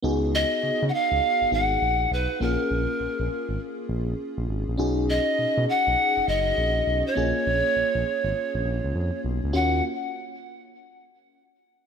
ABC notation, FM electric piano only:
X:1
M:4/4
L:1/8
Q:"Swing 16ths" 1/4=101
K:Ebm
V:1 name="FM electric piano"
[CEGA]4- [CEGA] [CEGA]3 | [B,DFA]8 | [^C^D^F^G]8 | [B,DFA]8 |
[B,DFG] z6 z |]